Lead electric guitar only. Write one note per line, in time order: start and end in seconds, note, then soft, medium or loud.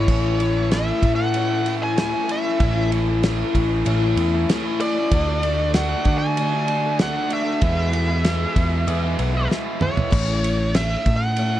0.00 0.69 C#5 loud
0.72 1.11 E5 medium
1.15 1.74 F#5 loud
1.83 1.98 G#5 loud
1.99 2.31 G#5 medium
2.31 2.89 E5 medium
4.81 5.71 D5 medium
5.75 6.18 F#5 medium
6.18 6.97 G#5 loud
7.02 7.30 F#5 loud
7.33 9.48 E5 medium
9.82 10.76 C#5 medium
10.76 11.15 E5 medium
11.16 11.60 F#5 loud